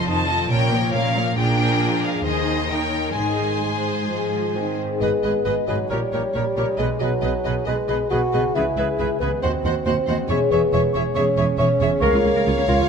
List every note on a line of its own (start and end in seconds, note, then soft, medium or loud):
0.00 0.52 F2 soft
0.00 0.52 C3 soft
0.00 0.28 C4 soft
0.07 0.45 F2 soft
0.07 0.29 D#3 soft
0.07 0.52 D#4 soft
0.07 0.29 D#4 soft
0.07 0.28 F4 soft
0.07 0.28 C5 soft
0.07 0.50 A5 medium
0.28 0.51 F3 soft
0.28 0.52 C4 soft
0.28 0.51 F4 soft
0.28 0.50 A4 soft
0.28 0.50 D#5 soft
0.49 0.86 A#1 medium
0.49 0.88 A#2 medium
0.49 1.35 A#2 soft
0.49 0.71 A#3 soft
0.49 0.70 C#4 soft
0.49 0.70 A#4 soft
0.49 0.70 C#5 soft
0.49 0.93 G5 medium
0.71 0.94 F3 soft
0.71 1.57 F3 soft
0.71 0.92 A#3 soft
0.71 0.91 A#4 soft
0.71 0.91 C#5 soft
0.93 1.32 A#2 medium
0.93 1.14 A#3 soft
0.93 1.39 C#4 soft
0.93 1.15 C#4 soft
0.93 1.14 A#4 soft
0.93 1.14 C#5 soft
0.93 1.36 F5 medium
1.15 1.36 F3 soft
1.15 2.26 A#3 soft
1.15 1.37 A#3 soft
1.15 1.35 A#4 soft
1.15 1.37 C#5 soft
1.36 1.77 A#1 soft
1.36 2.20 A#2 medium
1.36 2.26 A#2 soft
1.36 2.21 F3 soft
1.36 2.21 D4 soft
1.36 2.20 G#4 soft
1.36 2.20 A#4 medium
1.36 2.01 G5 medium
1.58 2.26 F3 soft
2.03 2.71 G#3 soft
2.03 2.25 F5 medium
2.24 2.66 D#2 soft
2.24 3.13 D#2 soft
2.24 2.69 D#3 soft
2.24 2.69 D#4 soft
2.24 2.68 G#4 soft
2.24 2.69 C5 soft
2.24 2.69 D#5 medium
2.48 2.91 D#4 soft
2.48 2.72 C5 soft
2.70 3.14 D#3 soft
2.70 3.17 D#3 soft
2.70 3.14 D#4 soft
2.70 3.14 A#4 soft
2.70 3.15 C#5 soft
2.70 3.16 G5 medium
2.93 3.61 D#4 soft
2.93 3.17 C#5 soft
3.14 3.58 G#1 soft
3.14 4.81 G#2 soft
3.14 4.06 G#2 soft
3.14 3.56 D#3 soft
3.14 3.56 D#4 soft
3.14 4.80 G#4 soft
3.14 4.80 C5 soft
3.14 4.75 G#5 medium
3.39 4.30 D#3 soft
3.61 4.05 G#3 soft
3.61 4.54 D#4 soft
3.85 4.77 G#3 soft
4.07 4.82 G#2 soft
4.07 4.54 F3 soft
4.32 5.03 D#3 soft
4.55 5.02 D#3 soft
4.55 5.02 C4 medium
4.55 4.91 D#4 soft
4.78 4.87 G#3 soft
4.83 5.84 G#2 soft
4.88 5.86 G#3 soft
4.92 5.88 D#4 soft
4.97 5.09 G#1 soft
4.97 5.67 B3 medium
4.97 5.86 G#4 soft
4.97 5.11 G#4 soft
4.97 5.09 G#4 soft
4.97 5.91 B4 soft
4.97 5.86 D#5 soft
4.97 5.07 D#5 soft
5.01 5.09 G#2 soft
5.01 5.10 B4 soft
5.01 5.13 B4 soft
5.01 5.09 D#5 soft
5.24 5.32 G#1 soft
5.24 5.32 G#2 soft
5.24 5.32 G#4 soft
5.24 5.34 G#4 soft
5.24 5.34 B4 soft
5.24 5.33 B4 soft
5.24 5.30 D#5 soft
5.24 5.32 D#5 soft
5.45 5.54 G#1 soft
5.45 5.55 G#2 soft
5.45 5.54 G#4 soft
5.45 5.57 G#4 soft
5.45 5.55 B4 soft
5.45 5.54 B4 soft
5.45 5.51 D#5 soft
5.45 5.53 D#5 soft
5.67 5.77 G#1 soft
5.67 5.77 G#2 soft
5.67 5.92 F#3 soft
5.67 5.76 G#4 soft
5.67 5.79 G#4 soft
5.67 5.77 B4 soft
5.67 5.79 B4 soft
5.67 5.75 D#5 soft
5.67 5.74 D#5 soft
5.73 6.72 A#2 soft
5.77 6.74 G3 soft
5.82 6.77 C#4 soft
5.86 6.35 G3 soft
5.86 6.79 G4 soft
5.86 6.79 C#5 soft
5.86 5.95 C#5 soft
5.86 6.79 C#5 soft
5.90 5.99 A#1 soft
5.90 5.99 A#2 soft
5.90 5.99 G4 soft
5.90 6.01 G4 soft
5.90 6.00 A#4 soft
5.90 5.99 C#5 soft
6.11 6.21 A#1 soft
6.11 6.21 A#2 soft
6.11 6.21 G4 soft
6.11 6.24 G4 soft
6.11 6.23 A#4 soft
6.11 6.17 C#5 soft
6.11 6.20 C#5 soft
6.11 6.21 C#5 soft
6.33 6.43 A#1 soft
6.33 6.43 A#2 soft
6.33 6.80 G3 medium
6.33 6.43 G4 soft
6.33 6.46 G4 soft
6.33 6.45 A#4 soft
6.33 6.39 C#5 soft
6.33 6.42 C#5 soft
6.33 6.44 C#5 soft
6.55 6.65 A#1 soft
6.55 6.66 A#2 soft
6.55 6.65 G4 soft
6.55 6.68 G4 soft
6.55 6.68 A#4 soft
6.55 6.61 C#5 soft
6.55 6.64 C#5 soft
6.55 6.65 C#5 soft
6.62 8.49 B2 soft
6.67 8.41 G#3 soft
6.71 8.53 D#4 soft
6.75 6.87 B2 soft
6.75 7.00 G#3 medium
6.75 6.87 G#4 soft
6.75 6.89 G#4 soft
6.75 8.50 B4 soft
6.75 6.86 B4 soft
6.75 6.84 D#5 soft
6.75 6.86 D#5 soft
6.79 6.87 B1 soft
6.79 9.39 G#4 soft
6.79 9.40 B4 soft
6.79 6.91 B4 soft
7.00 7.09 B1 soft
7.00 7.09 B2 soft
7.00 7.65 F#3 medium
7.00 7.11 G#4 soft
7.00 7.09 G#4 soft
7.00 7.09 B4 soft
7.00 7.13 B4 soft
7.00 7.08 D#5 soft
7.00 7.07 D#5 soft
7.22 7.31 B1 soft
7.22 7.31 B2 soft
7.22 7.31 G#4 soft
7.22 7.34 G#4 soft
7.22 7.31 B4 soft
7.22 7.34 B4 soft
7.22 7.30 D#5 soft
7.44 7.53 B1 soft
7.44 7.54 B2 soft
7.44 7.53 G#4 soft
7.44 7.55 G#4 soft
7.44 7.53 B4 soft
7.44 7.55 B4 soft
7.44 7.50 D#5 soft
7.44 7.52 D#5 soft
7.66 7.75 B1 soft
7.66 7.76 B2 soft
7.66 8.09 G#3 medium
7.66 7.75 G#4 soft
7.66 7.77 G#4 soft
7.66 7.77 B4 soft
7.66 7.75 B4 soft
7.66 7.72 D#5 soft
7.66 7.74 D#5 soft
7.88 7.97 B1 soft
7.88 7.97 B2 soft
7.88 7.97 G#4 soft
7.88 8.00 G#4 soft
7.88 7.99 B4 soft
7.88 7.97 B4 soft
7.88 7.94 D#5 soft
7.88 7.96 D#5 soft
8.10 8.19 B1 soft
8.10 8.20 B2 soft
8.10 8.56 F#4 medium
8.10 8.19 G#4 soft
8.10 8.22 G#4 soft
8.10 8.18 B4 soft
8.10 8.22 B4 soft
8.10 8.17 D#5 soft
8.10 8.20 D#5 soft
8.32 8.41 B1 soft
8.32 8.42 B2 soft
8.32 8.40 G#4 soft
8.32 8.45 G#4 soft
8.32 8.40 B4 soft
8.32 8.44 B4 soft
8.32 8.39 D#5 soft
8.32 8.42 D#5 soft
8.38 9.36 C#3 soft
8.42 9.38 G#3 soft
8.47 9.40 C#4 soft
8.51 8.63 C#2 soft
8.51 9.19 E4 medium
8.51 8.63 G#4 soft
8.51 9.43 B4 soft
8.51 8.61 E5 soft
8.55 8.64 C#3 soft
8.55 8.66 G#4 soft
8.55 8.64 B4 soft
8.55 8.66 B4 soft
8.55 8.63 E5 soft
8.76 8.84 C#2 soft
8.76 8.86 C#3 soft
8.76 8.85 G#4 soft
8.76 8.88 G#4 soft
8.76 8.86 B4 soft
8.76 8.89 B4 soft
8.76 8.86 E5 soft
8.76 8.84 E5 soft
8.98 9.08 C#2 soft
8.98 9.08 C#3 soft
8.98 9.06 G#4 soft
8.98 9.10 G#4 soft
8.98 9.06 B4 soft
8.98 9.10 B4 soft
8.98 9.05 E5 soft
8.98 9.08 E5 soft
9.20 9.28 C#2 soft
9.20 9.29 C#3 soft
9.20 9.41 B3 medium
9.20 9.29 G#4 soft
9.20 9.33 G#4 soft
9.20 9.31 B4 soft
9.20 9.30 B4 soft
9.20 9.28 E5 soft
9.20 9.30 E5 soft
9.25 10.23 D#3 soft
9.30 10.25 F#3 soft
9.34 10.27 C4 soft
9.39 9.51 D#2 soft
9.39 9.85 C4 medium
9.39 10.30 C5 soft
9.39 9.53 C5 soft
9.39 9.51 F#5 soft
9.43 9.51 D#2 soft
9.43 10.30 F#4 soft
9.43 9.51 F#4 soft
9.43 9.54 F#4 soft
9.43 10.30 C5 soft
9.43 9.52 C5 soft
9.43 9.50 D#5 soft
9.64 9.72 D#2 soft
9.64 9.73 D#2 soft
9.64 9.73 F#4 soft
9.64 9.76 F#4 soft
9.64 9.75 C5 soft
9.64 9.74 C5 soft
9.64 9.70 D#5 soft
9.64 9.73 F#5 soft
9.86 9.94 D#2 soft
9.86 10.31 C4 medium
9.86 9.94 F#4 soft
9.86 9.97 F#4 soft
9.86 9.94 C5 soft
9.86 9.96 C5 soft
9.86 9.92 D#5 soft
9.86 9.95 F#5 soft
10.07 10.15 D#2 soft
10.07 10.16 D#2 soft
10.07 10.17 F#4 soft
10.07 10.19 F#4 soft
10.07 10.16 C5 soft
10.07 10.18 C5 soft
10.07 10.15 D#5 soft
10.07 10.17 F#5 soft
10.12 11.96 E3 soft
10.16 11.98 G#3 soft
10.21 11.92 C#4 soft
10.26 10.37 E1 soft
10.26 10.37 E2 medium
10.26 10.52 C#4 medium
10.26 12.03 G#4 soft
10.26 10.37 C#5 medium
10.26 10.36 E5 soft
10.30 10.38 G#4 soft
10.30 12.00 G#4 soft
10.30 10.41 G#4 soft
10.30 10.40 C#5 soft
10.30 12.89 C#5 soft
10.30 10.39 E5 soft
10.51 10.59 E1 soft
10.51 10.60 E2 soft
10.51 10.93 B3 medium
10.51 10.60 G#4 soft
10.51 10.62 G#4 soft
10.51 10.59 C#5 soft
10.51 10.62 C#5 soft
10.51 10.61 E5 soft
10.51 10.59 E5 soft
10.73 10.81 E1 soft
10.73 10.81 E2 soft
10.73 10.82 G#4 soft
10.73 10.84 G#4 soft
10.73 10.82 C#5 soft
10.73 10.81 C#5 soft
10.73 10.81 E5 soft
10.93 11.02 E1 soft
10.93 11.03 E2 soft
10.93 11.03 G#4 soft
10.93 11.03 C#5 soft
10.93 11.02 E5 soft
10.98 11.07 G#4 soft
11.15 11.23 E1 medium
11.15 11.24 E2 medium
11.15 11.56 C#4 medium
11.15 11.25 G#4 soft
11.15 11.25 C#5 medium
11.15 11.23 C#5 soft
11.15 11.23 E5 medium
11.15 11.22 E5 soft
11.20 11.29 G#4 medium
11.36 11.44 E1 medium
11.36 11.46 E2 medium
11.36 11.46 G#4 soft
11.36 11.45 C#5 soft
11.36 11.47 C#5 soft
11.36 11.45 E5 soft
11.36 11.44 E5 soft
11.41 11.50 G#4 soft
11.58 11.66 E1 soft
11.58 11.67 E2 medium
11.58 12.03 C#4 medium
11.58 11.68 G#4 soft
11.58 11.71 G#4 soft
11.58 11.68 C#5 medium
11.58 11.68 C#5 soft
11.58 11.66 E5 soft
11.58 11.65 E5 soft
11.80 11.89 E1 medium
11.80 11.89 E2 medium
11.80 11.89 G#4 soft
11.80 11.91 G#4 soft
11.80 11.90 C#5 soft
11.80 11.89 C#5 soft
11.80 11.90 E5 soft
11.80 11.88 E5 soft
11.84 12.89 C#3 medium
11.89 12.89 A#3 soft
11.89 12.89 C#4 soft
11.98 12.06 C#2 medium
11.98 12.07 C#2 medium
11.98 12.68 A#3 medium
11.98 12.89 F4 soft
11.98 12.06 A#4 medium
11.98 12.17 C#5 medium
11.98 12.89 C#5 medium
12.02 12.89 A#4 medium
12.02 12.19 A#4 medium
12.02 12.89 F5 medium
12.02 12.24 F5 medium
12.13 12.17 C#2 soft
12.13 12.18 F4 soft
12.23 12.28 C#2 soft
12.23 12.29 C#2 soft
12.23 12.29 C#4 soft
12.35 12.40 C#2 medium
12.35 12.40 A#4 medium
12.46 12.51 C#2 soft
12.46 12.51 F4 soft
12.57 12.63 C#2 soft
12.57 12.62 C#4 soft
12.68 12.73 C#2 medium
12.68 12.74 C#2 medium
12.68 12.89 F4 medium
12.68 12.73 A#4 medium
12.80 12.85 C#2 medium
12.80 12.85 F4 soft